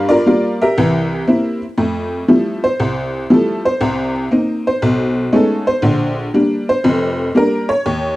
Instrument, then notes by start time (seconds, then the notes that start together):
honky-tonk piano
Already playing: G2 G3 F5
0.09 F4 A#4 D5
0.26 G3 A#3 F4
0.62 G4 A#4 E5
0.78 C2 E3
1.27 A#3 C4 E4
1.77 F2 A3
2.28 F3 G3 A3 E4
2.64 C5
2.80 C2
3.30 F3 G3 A3 E4 A4
3.65 C5
3.81 C2 C3
4.31 A#3 C4 D#4
4.67 C5
4.82 B1
5.33 G#3 A3 B3 C#4 D#4 A4
5.67 C5
5.82 A#1 D3
6.34 G3 A#3 D4
6.69 C5
6.84 F1 F2
7.35 G3 A#3 D4 A#4
7.69 C#5
7.86 D#2